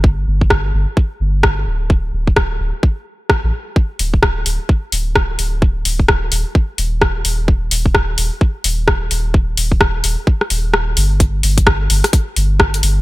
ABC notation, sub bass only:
X:1
M:4/4
L:1/16
Q:"Swing 16ths" 1/4=129
K:Dphr
V:1 name="Sub bass" clef=bass
G,,,2 G,,,4 G,,, z3 G,,,4 D,,,2- | D,,,2 D,,,4 D,,, z6 A,,, z2 | z2 D,,,4 D,,, z3 D,,,4 D,,,2- | D,,,2 D,,,4 E,,, z3 E,,,4 E,,,2- |
E,,,2 E,,,4 E,,, z3 E,,,4 E,,,2- | E,,,2 E,,,4 E,,, z3 E,,,4 G,,,2- | G,,,2 G,,,4 G,,, z3 G,,,4 G,,,2 |]